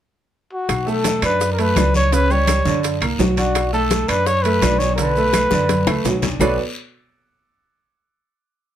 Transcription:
0.53 0.91 F#4 medium
0.69 1.19 B1 medium
0.69 high bongo medium
0.69 high conga soft
0.69 high timbale medium
0.69 long guiro medium
0.69 claves medium
0.69 maracas medium
0.86 1.16 A3 medium
0.86 1.16 A4 medium
0.86 1.24 A4 medium
0.86 high bongo soft
0.86 high conga soft
0.86 maracas soft
1.04 high bongo medium
1.04 high conga medium
1.04 high timbale medium
1.04 low timbale medium
1.04 short guiro medium
1.04 maracas medium
1.22 1.72 F#2 medium
1.22 1.52 D4 medium
1.22 1.51 B4 medium
1.22 1.52 D5 medium
1.22 high conga soft
1.22 high timbale medium
1.22 short guiro medium
1.22 claves medium
1.22 maracas soft
1.41 high bongo medium
1.41 high conga soft
1.41 long guiro medium
1.41 maracas medium
1.53 1.62 A#4 medium
1.58 1.73 A3 medium
1.58 1.73 A4 medium
1.58 1.95 B4 medium
1.58 high bongo soft
1.58 high conga soft
1.58 high timbale medium
1.58 maracas soft
1.76 2.60 C#2 medium
1.76 2.06 D4 medium
1.76 2.06 D5 medium
1.76 high bongo soft
1.76 low bongo medium
1.76 high conga medium
1.76 high timbale medium
1.76 low timbale medium
1.76 short guiro medium
1.76 claves medium
1.76 maracas medium
1.94 2.15 C#5 loud
1.94 high bongo soft
1.94 high conga medium
1.94 short guiro medium
1.94 maracas soft
2.12 2.27 C#3 medium
2.12 2.27 C#4 medium
2.12 2.33 B4 loud
2.12 high bongo medium
2.12 high conga soft
2.12 high timbale medium
2.12 long guiro medium
2.12 maracas medium
2.30 2.59 G3 medium
2.30 2.60 G4 medium
2.30 2.84 C#5 medium
2.30 high bongo soft
2.30 high conga soft
2.30 maracas soft
2.47 high bongo medium
2.47 high conga medium
2.47 high timbale medium
2.47 low timbale medium
2.47 short guiro medium
2.47 claves medium
2.47 maracas medium
2.65 2.99 F#2 medium
2.65 2.95 D3 medium
2.65 2.95 D4 medium
2.65 high conga medium
2.65 short guiro medium
2.65 maracas soft
2.83 high bongo medium
2.83 high conga soft
2.83 high timbale medium
2.83 long guiro medium
2.83 maracas medium
3.01 3.18 C2 medium
3.01 3.16 A#3 medium
3.01 3.16 A#4 medium
3.01 high bongo soft
3.01 high conga soft
3.01 high timbale loud
3.01 claves medium
3.01 maracas soft
3.19 4.03 B1 medium
3.19 3.34 F#3 medium
3.19 3.34 F#4 medium
3.19 high bongo soft
3.19 low bongo medium
3.19 high conga medium
3.19 low timbale medium
3.19 short guiro medium
3.19 maracas medium
3.37 3.67 D4 medium
3.37 3.71 F#4 medium
3.37 3.67 D5 medium
3.37 high bongo soft
3.37 high conga medium
3.37 high timbale medium
3.37 short guiro medium
3.37 maracas soft
3.55 high bongo medium
3.55 high conga soft
3.55 high timbale medium
3.55 long guiro medium
3.55 claves medium
3.55 maracas medium
3.73 4.02 A3 medium
3.73 4.02 A4 medium
3.73 4.10 A4 medium
3.73 high bongo soft
3.73 high conga soft
3.73 maracas soft
3.91 high bongo medium
3.91 high conga medium
3.91 high timbale medium
3.91 low timbale medium
3.91 short guiro medium
3.91 maracas medium
4.08 4.58 F#2 medium
4.08 4.38 D4 medium
4.08 4.28 B4 loud
4.08 4.38 D5 medium
4.08 high conga soft
4.08 high timbale medium
4.08 short guiro medium
4.08 claves medium
4.08 maracas soft
4.26 4.44 C#5 loud
4.26 high bongo medium
4.26 high conga soft
4.26 long guiro medium
4.26 maracas medium
4.43 4.59 A3 medium
4.43 4.60 A4 medium
4.43 4.80 B4 medium
4.43 high bongo soft
4.43 high conga soft
4.43 high timbale medium
4.43 maracas soft
4.62 5.46 B1 medium
4.62 4.92 D4 medium
4.62 4.92 D5 medium
4.62 high bongo soft
4.62 low bongo medium
4.62 high conga medium
4.62 high timbale medium
4.62 low timbale medium
4.62 short guiro medium
4.62 claves medium
4.62 maracas medium
4.79 4.95 C#5 medium
4.79 high bongo soft
4.79 high conga medium
4.79 short guiro medium
4.79 maracas soft
4.96 5.13 D3 medium
4.96 5.13 D4 medium
4.96 6.18 B4 medium
4.96 high bongo medium
4.96 high conga soft
4.96 high timbale medium
4.96 long guiro medium
4.96 maracas medium
5.16 5.46 A3 medium
5.16 5.46 A4 medium
5.16 high bongo soft
5.16 high conga soft
5.16 maracas soft
5.33 high bongo medium
5.33 high conga medium
5.33 high timbale medium
5.33 low timbale medium
5.33 short guiro medium
5.33 claves medium
5.33 maracas medium
5.51 5.85 F#2 medium
5.51 5.81 D3 medium
5.51 5.81 D4 medium
5.51 high bongo medium
5.51 high conga medium
5.51 short guiro medium
5.51 maracas soft
5.69 high bongo medium
5.69 high conga medium
5.69 high timbale medium
5.69 long guiro medium
5.69 maracas medium
5.87 6.04 C#2 medium
5.87 6.02 A3 medium
5.87 6.02 A4 medium
5.87 low bongo loud
5.87 low conga medium
5.87 high timbale medium
5.87 claves medium
5.87 maracas soft
6.05 6.37 B1 medium
6.05 6.20 F#3 medium
6.05 6.20 F#4 medium
6.05 low bongo medium
6.05 low conga medium
6.05 low timbale medium
6.05 short guiro medium
6.05 maracas medium
6.22 6.37 D4 medium
6.22 6.38 D5 medium
6.22 low bongo medium
6.22 low conga loud
6.22 high timbale medium
6.22 short guiro medium
6.22 maracas soft
6.39 6.57 B1 medium
6.39 6.57 B3 medium
6.39 6.57 F#4 medium
6.39 6.57 A4 medium
6.39 6.58 B4 medium
6.39 6.58 C#5 medium
6.39 6.58 D5 medium
6.39 low bongo medium
6.39 low conga medium
6.39 low timbale medium
6.39 long guiro medium
6.39 claves medium
6.39 maracas medium

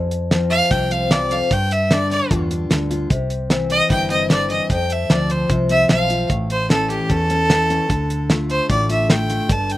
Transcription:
0.00 0.60 F2 medium
0.00 1.10 F2 medium
0.11 closed hi-hat medium
0.31 1.49 F3 medium
0.31 0.90 C4 medium
0.31 snare loud
0.31 closed hi-hat medium
0.50 0.72 F5 loud
0.50 closed hi-hat medium
0.71 1.40 C2 medium
0.71 1.48 C3 medium
0.71 1.49 F4 medium
0.71 0.93 G5 medium
0.71 kick loud
0.71 closed hi-hat medium
0.91 1.49 C4 medium
0.91 1.13 F5 medium
0.91 closed hi-hat medium
1.10 1.30 E2 medium
1.10 1.33 D5 medium
1.10 snare loud
1.10 closed hi-hat medium
1.30 1.50 F2 medium
1.30 1.54 F5 medium
1.30 closed hi-hat medium
1.51 2.20 G2 medium
1.51 2.29 G2 medium
1.51 1.74 G5 medium
1.51 kick loud
1.51 closed hi-hat medium
1.71 1.94 E5 medium
1.71 closed hi-hat medium
1.91 2.69 D3 medium
1.91 2.49 D4 medium
1.91 2.10 D5 medium
1.91 snare loud
1.91 closed hi-hat medium
2.11 2.30 D5 medium
2.11 closed hi-hat medium
2.31 2.65 E2 medium
2.31 3.08 G2 medium
2.31 2.90 F4 medium
2.31 kick loud
2.31 closed hi-hat medium
2.50 3.08 D4 medium
2.50 closed hi-hat medium
2.70 3.05 D2 medium
2.70 3.10 D3 medium
2.70 snare loud
2.70 closed hi-hat medium
2.91 3.08 F4 medium
2.91 closed hi-hat medium
3.10 3.80 C2 medium
3.10 3.50 C3 medium
3.10 kick loud
3.10 closed hi-hat medium
3.30 closed hi-hat medium
3.50 4.30 E3 medium
3.50 4.09 C4 medium
3.50 snare loud
3.50 closed hi-hat medium
3.70 3.90 D#5 loud
3.70 closed hi-hat medium
3.90 4.60 G1 medium
3.90 4.68 G2 medium
3.90 4.70 E4 medium
3.90 4.10 G5 medium
3.90 kick loud
3.90 closed hi-hat medium
4.10 4.68 C4 medium
4.10 4.29 D#5 medium
4.10 closed hi-hat medium
4.30 4.50 D3 medium
4.30 4.49 D5 medium
4.30 snare loud
4.30 closed hi-hat medium
4.50 4.70 E3 medium
4.50 4.69 D#5 medium
4.50 closed hi-hat medium
4.70 5.05 F2 medium
4.70 6.28 F2 medium
4.70 4.94 G5 medium
4.70 kick loud
4.70 closed hi-hat medium
4.90 5.13 E5 medium
4.90 closed hi-hat medium
5.10 5.44 D2 medium
5.10 5.88 F3 medium
5.10 5.69 C4 medium
5.10 5.32 D5 medium
5.10 snare loud
5.10 closed hi-hat medium
5.30 5.50 C5 medium
5.30 closed hi-hat medium
5.49 5.84 C2 medium
5.49 5.90 C3 medium
5.49 6.09 F4 medium
5.49 kick loud
5.49 closed hi-hat medium
5.69 6.28 C4 medium
5.69 5.89 E5 loud
5.69 closed hi-hat medium
5.89 6.24 B1 medium
5.89 6.27 F3 medium
5.89 6.29 F5 medium
5.89 snare loud
5.89 closed hi-hat medium
6.10 6.28 F4 medium
6.10 closed hi-hat medium
6.29 6.99 A1 medium
6.29 7.10 A2 medium
6.29 kick loud
6.29 closed hi-hat medium
6.50 6.70 C5 medium
6.50 closed hi-hat medium
6.69 7.49 E3 medium
6.69 7.09 C#4 medium
6.69 6.89 A4 medium
6.69 snare loud
6.69 closed hi-hat medium
6.90 7.10 G4 medium
6.90 closed hi-hat medium
7.09 7.79 E2 medium
7.09 7.90 E2 medium
7.09 7.29 C#4 medium
7.09 8.26 A4 loud
7.09 kick medium
7.09 closed hi-hat medium
7.30 7.69 C#4 medium
7.30 closed hi-hat medium
7.50 7.88 E3 medium
7.50 snare loud
7.50 closed hi-hat medium
7.70 7.88 C#4 medium
7.70 closed hi-hat medium
7.89 8.59 D2 medium
7.89 9.78 D3 medium
7.89 kick loud
7.89 closed hi-hat medium
8.10 closed hi-hat medium
8.30 9.09 A3 medium
8.30 8.69 F4 medium
8.30 snare loud
8.30 closed hi-hat medium
8.50 8.69 C5 loud
8.50 closed hi-hat medium
8.69 9.39 A1 medium
8.69 9.50 A2 medium
8.69 8.88 F4 medium
8.69 8.89 D5 medium
8.69 kick medium
8.69 closed hi-hat medium
8.90 9.29 F4 medium
8.90 9.09 E5 medium
8.90 closed hi-hat medium
9.10 9.47 A3 medium
9.10 9.53 G5 medium
9.10 snare loud
9.10 closed hi-hat medium
9.30 9.48 F4 medium
9.30 closed hi-hat medium
9.49 9.78 G1 medium
9.49 9.78 G2 medium
9.49 9.73 A5 medium
9.49 kick loud
9.49 closed hi-hat medium
9.70 9.78 G5 loud
9.70 closed hi-hat medium

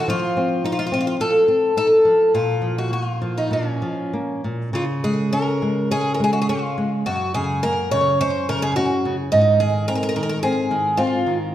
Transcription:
0.08 1.19 F3 medium
0.08 0.64 F4 medium
0.37 0.64 C4 soft
0.64 0.92 D#4 medium
0.64 0.71 F4 medium
0.72 0.78 F4 medium
0.79 0.85 F4 medium
0.87 0.92 F4 medium
0.92 1.19 C4 soft
0.92 0.99 F4 medium
1.01 1.06 F4 medium
1.07 1.14 F4 medium
1.20 1.47 F3 medium
1.20 1.76 A4 medium
1.48 1.76 C4 medium
1.77 2.04 D#4 soft
1.77 2.34 A4 medium
2.05 2.33 F3 soft
2.34 3.50 A#2 medium
2.34 2.78 F4 medium
2.62 2.91 F3 soft
2.78 2.93 F#4 medium
2.91 3.20 A#3 soft
2.91 3.04 F#4 medium
3.04 3.39 F4 medium
3.22 3.51 F3 soft
3.38 3.53 D#4 medium
3.51 3.81 A#2 soft
3.51 4.41 C#4 medium
3.82 4.12 F3 soft
4.13 4.43 A#3 soft
4.44 4.73 A#2 soft
4.73 7.02 C#3 medium
4.73 4.83 F4 medium
5.04 5.32 G#3 soft
5.04 5.32 G#4 medium
5.33 5.61 C#4 soft
5.33 5.91 A#4 medium
5.62 5.90 G#3 soft
5.91 6.19 C#4 soft
5.91 6.14 G#4 medium
6.14 6.23 A#4 medium
6.20 6.48 G#3 soft
6.24 6.32 G#4 medium
6.33 6.41 F#4 medium
6.42 6.49 G#4 medium
6.49 6.77 C#4 medium
6.49 6.89 F4 medium
6.78 7.06 G#3 soft
7.06 9.29 F#2 medium
7.06 7.34 F#4 medium
7.34 7.63 C#3 soft
7.34 7.63 G#4 medium
7.63 7.92 A#3 soft
7.63 7.90 A#4 medium
7.91 8.21 C#3 soft
7.91 8.20 C#5 medium
8.21 8.49 C#4 medium
8.21 8.49 C5 medium
8.49 8.76 C#3 medium
8.49 8.62 A#4 medium
8.62 8.76 G#4 medium
8.76 9.04 C#4 medium
8.76 9.15 F#4 medium
9.05 9.32 C#3 soft
9.32 11.51 G#2 medium
9.32 9.58 D#4 medium
9.60 9.88 D#3 soft
9.60 9.88 G#4 medium
9.88 10.16 C4 medium
9.88 9.94 A#4 medium
9.95 10.02 A#4 medium
10.03 10.08 A#4 medium
10.09 10.15 A#4 medium
10.16 10.43 D#3 medium
10.16 10.22 A#4 medium
10.23 10.28 A#4 medium
10.29 10.38 A#4 medium
10.43 10.70 C4 medium
10.43 11.00 G#4 medium
10.71 10.98 D#3 medium
10.97 11.26 C4 medium
10.97 11.37 F4 medium
11.26 11.54 D#3 soft

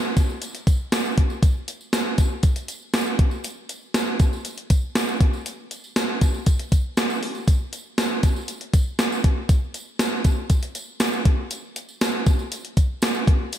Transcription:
0.17 kick loud
0.17 closed hi-hat medium
0.17 tambourine medium
0.30 tambourine soft
0.42 closed hi-hat loud
0.42 tambourine soft
0.55 closed hi-hat medium
0.55 tambourine soft
0.67 kick medium
0.67 closed hi-hat medium
0.67 tambourine medium
0.92 snare loud
0.92 closed hi-hat medium
0.92 tambourine medium
1.05 tambourine medium
1.18 kick loud
1.18 closed hi-hat medium
1.30 tambourine soft
1.43 kick loud
1.43 closed hi-hat loud
1.43 tambourine medium
1.68 closed hi-hat medium
1.68 tambourine soft
1.81 tambourine soft
1.93 snare loud
1.93 closed hi-hat medium
1.93 tambourine medium
2.18 kick loud
2.18 closed hi-hat medium
2.18 tambourine medium
2.43 kick loud
2.43 closed hi-hat loud
2.43 tambourine soft
2.56 closed hi-hat medium
2.56 tambourine soft
2.68 closed hi-hat medium
2.68 tambourine medium
2.94 snare loud
2.94 closed hi-hat medium
2.94 tambourine medium
3.06 tambourine medium
3.19 kick loud
3.19 closed hi-hat medium
3.31 tambourine soft
3.44 closed hi-hat loud
3.44 tambourine medium
3.69 closed hi-hat medium
3.69 tambourine soft
3.94 snare loud
3.94 closed hi-hat medium
3.94 tambourine medium
4.19 kick loud
4.19 closed hi-hat medium
4.19 tambourine medium
4.33 tambourine soft
4.45 closed hi-hat loud
4.45 tambourine medium
4.58 closed hi-hat medium
4.70 kick medium
4.70 closed hi-hat medium
4.70 tambourine medium
4.95 snare loud
4.95 closed hi-hat medium
4.95 tambourine loud
4.95 tambourine medium
5.08 tambourine medium
5.21 kick loud
5.21 closed hi-hat medium
5.33 tambourine soft
5.46 closed hi-hat loud
5.46 tambourine medium
5.71 closed hi-hat medium
5.71 tambourine soft
5.84 tambourine soft
5.96 snare loud
5.96 closed hi-hat medium
5.96 tambourine medium
6.21 kick loud
6.21 closed hi-hat medium
6.21 tambourine medium
6.34 tambourine soft
6.46 kick loud
6.46 closed hi-hat loud
6.46 tambourine soft
6.59 closed hi-hat medium
6.59 tambourine soft
6.72 kick medium
6.72 closed hi-hat medium
6.72 tambourine medium
6.97 snare loud
6.97 closed hi-hat medium
6.97 tambourine medium
7.10 tambourine medium
7.23 open hi-hat medium
7.35 tambourine soft
7.47 kick loud
7.47 closed hi-hat loud
7.47 tambourine medium
7.73 closed hi-hat medium
7.73 tambourine soft
7.98 snare loud
7.98 closed hi-hat medium
7.98 tambourine medium
8.23 kick loud
8.23 closed hi-hat medium
8.23 tambourine medium
8.36 tambourine soft
8.48 closed hi-hat loud
8.48 tambourine medium
8.61 closed hi-hat medium
8.73 kick medium
8.73 closed hi-hat medium
8.73 tambourine medium
8.99 snare loud
8.99 closed hi-hat medium
8.99 tambourine medium
9.12 tambourine medium
9.24 kick loud
9.24 closed hi-hat medium
9.49 kick loud
9.49 closed hi-hat loud
9.49 tambourine medium
9.74 closed hi-hat medium
9.74 tambourine medium
9.99 snare loud
9.99 closed hi-hat medium
9.99 tambourine medium
10.24 kick loud
10.24 closed hi-hat medium
10.24 tambourine medium
10.50 kick medium
10.50 closed hi-hat loud
10.50 tambourine medium
10.63 closed hi-hat medium
10.63 tambourine soft
10.75 closed hi-hat medium
10.75 tambourine medium
11.00 snare loud
11.00 closed hi-hat medium
11.00 tambourine medium
11.13 tambourine medium
11.25 kick loud
11.25 closed hi-hat medium
11.50 closed hi-hat loud
11.50 tambourine medium
11.76 closed hi-hat medium
11.76 tambourine soft
11.89 tambourine soft
12.01 snare loud
12.01 closed hi-hat medium
12.01 tambourine medium
12.26 kick loud
12.26 closed hi-hat medium
12.26 tambourine medium
12.39 tambourine soft
12.52 closed hi-hat loud
12.52 tambourine medium
12.65 closed hi-hat medium
12.77 kick medium
12.77 closed hi-hat medium
12.77 tambourine medium
13.02 snare loud
13.02 closed hi-hat medium
13.02 tambourine medium
13.15 tambourine medium
13.27 kick loud
13.27 closed hi-hat medium
13.52 closed hi-hat loud
13.52 tambourine medium

